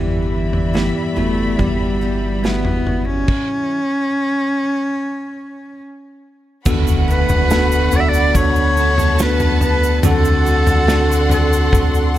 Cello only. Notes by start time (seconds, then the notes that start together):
Already playing: E3
0.31 E3
1.16 A3
1.57 G3
2.43 B3
3.05 C#4
7.10 B4
7.96 D5 E5
8.09 D5
8.37 C#5
9.22 B4
9.65 B4
10.07 A4
11.33 A4